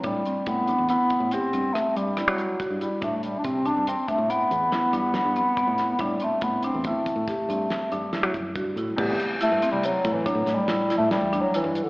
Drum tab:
CC |--------------|--------------|--------------|x-------------|
HH |xxxxxxxxxxxxxx|xxxxxxxxxxxxxx|xxxxxxxxxxxxxx|-xxxxxxxxxxxxx|
SD |--------r-r---|--------o-o--o|------o-o-o---|-------oooo---|
BD |o-o--o------o-|o-o--o------o-|o-o-ooo----oo-|o----oo-------|